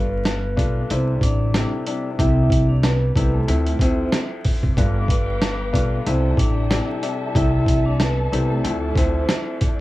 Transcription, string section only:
4.76 B4 F5 G5 D6
6.04 A4 E5 G5 A5
8.63 D5

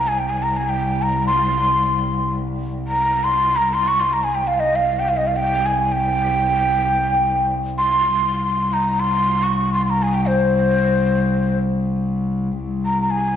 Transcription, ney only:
0.08 G#5
0.19 G5
0.29 G#5
0.43 A#5
0.57 G#5
0.69 G5
1.02 A#5
1.27 C6
2.87 A#5
3.24 C6
3.56 A#5
3.74 C6
3.88 C#6
4.00 C6
4.13 A#5
4.24 G#5
4.35 G5
4.47 F5
4.60 D#5
4.76 F5
4.99 G5
5.09 F5
5.17 D#5
5.27 F5
5.37 G5
5.66 G#5
5.92 G5
7.78 C6
8.73 A#5
9.00 C6
9.43 C#6
9.73 C6
9.86 C6
9.90 A#5
10.03 G#5
10.14 G5
10.27 C5
12.86 A#5
13.02 A#5
13.11 G#5

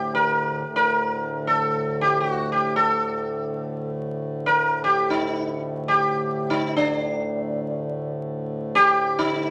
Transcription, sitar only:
Already playing: G4
0.15 A#4
0.76 A#4
1.47 A4
2.01 G4
2.20 F#4
2.52 G4
2.76 A4
4.46 A#4
4.84 G4
5.10 D#4
5.88 G4
6.50 D#4
6.76 D4
8.75 G4
9.18 D#4

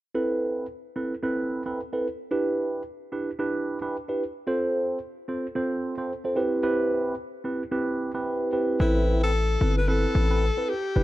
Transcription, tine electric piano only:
0.15 C4 E4 A4 B4
0.96 C4 E4 A4 B4
1.23 C4 E4 A4 B4
1.66 C4 E4 A4 B4
1.93 C4 E4 A4 B4
2.31 D4 E4 G4 B4
3.12 D4 E4 G4 B4
3.39 D4 E4 G4 B4
3.81 D4 E4 G4 B4
4.08 D4 E4 G4 B4
4.47 C4 F4 A4 C5
5.28 C4 F4 A4 C5
5.55 C4 F4 A4 C5
5.98 C4 F4 A4 C5
6.24 C4 F4 A4 C5
6.36 C4 E4 G4 B4
6.63 C4 E4 G4 B4
7.44 C4 E4 G4 B4
7.71 C4 E4 G4 B4
8.14 C4 E4 G4 B4
8.52 C4 E4 G4 B4
8.80 C4 E4 A4 B4
9.61 C4 E4 A4 B4
9.88 C4 E4 A4 B4
10.30 C4 E4 A4 B4
10.57 C4 E4 A4 B4
10.96 D4 E4 G4 B4

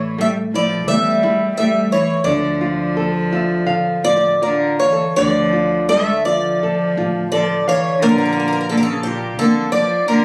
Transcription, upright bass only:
Already playing: A1
0.87 E2
1.23 E2
2.25 D2
3.67 A1
4.04 A1
5.18 D2
6.62 A1
6.97 A1
8.03 A#1
9.40 F2
9.73 F2

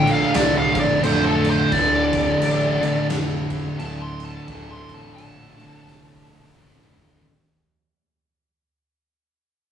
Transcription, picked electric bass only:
Already playing: A#1
0.35 C2
0.75 A#1
1.04 F1
1.72 D1
2.40 A1
3.10 F1
3.80 D1
4.48 D1
4.89 A1
5.16 A#1
5.84 C2
6.26 A#1
6.53 F1

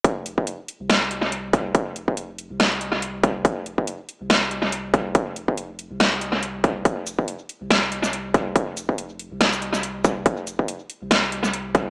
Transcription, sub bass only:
0.04 F1
0.80 C2
1.75 F1
2.08 F1
2.51 C2
3.45 F1
4.21 C2
5.15 F1
5.48 F1
5.91 C2
6.85 F1
7.61 C2
8.56 F1
8.89 F1
9.32 C2
10.26 F1
11.02 C2

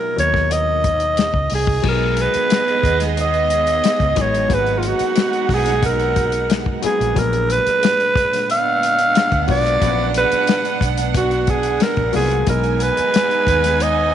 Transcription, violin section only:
1.84 B3 G#4 D#5
4.50 B3 D#4 F#5
8.48 B3 D4 F#5
12.47 B3 D#4 G#5

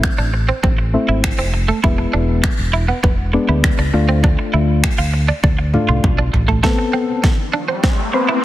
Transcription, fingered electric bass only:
0.19 A1
0.64 A1
1.09 G#1
1.39 F1
1.84 E1
2.14 E1
2.59 E1
3.04 E1
3.49 D2
3.79 C#2
3.94 D2
4.54 D2
4.99 D2
5.44 D2
5.89 C2
6.04 B1
6.34 A1

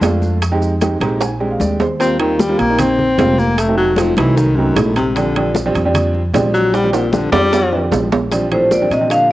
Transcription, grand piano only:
0.02 A3 C4 D4 F4
0.52 G#3 C4 D#4 G4
0.81 G#3 C4 D#4 G4
1.02 G#3 C4 D#4 G4 A#5
1.22 G#5
1.40 G#3 C4 D4 G4
1.51 F5
1.60 D5
1.80 C5
1.99 G3 A#3 C4 F4
2.20 G3 A#3 C4 F4
2.49 G3 A#3 C4 F4
2.70 G3 A#3 C4 D#4
3.19 G3 A#3 C4 F4
3.68 F#3 A3 C4 D#4
3.99 F#3 A3 C4 D#4
4.18 F#3 A3 C4 D#4
4.58 F#3 A3 C4 D#4
5.17 F3 G3 C4 D4
5.36 F3 G3 C4 D4
5.66 F3 G3 C4 D4
5.85 F3 G3 C4 D4
6.35 F3 G3 C4 D4
6.84 F3 G3 C4 D4
7.14 F3 G3 C4 D4
7.33 F3 G3 C4 D4
7.72 F3 G3 C4 D4
8.32 F3 G3 C4 D4
8.51 F3 G3 C4 D4
8.82 F3 G3 C4 D4
9.01 F3 G3 C4 D4

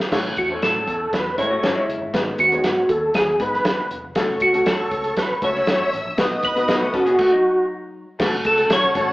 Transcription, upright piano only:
0.11 A2 C#4 E4 A4 C#5
0.50 C#4 E4 A4 C#5
1.38 C#4 E4 A4 C5
1.46 C#5
2.13 G#2 B3 D#4 G#4 B4
2.52 B3 D#4 G#4 C#5
3.40 B3 D#4 G#4 B4
4.15 A3 C#4 F#4 A4
4.53 A3 C#4 F#4 A4
5.41 A3 C#4 F#4 A4
6.17 B2 B3 D#4 F#4 B4
6.56 B3 D#4 F#4 B4
8.19 A3 C#4 F#4 G#4
8.27 A4
8.94 A3 C#4 F#4 A4

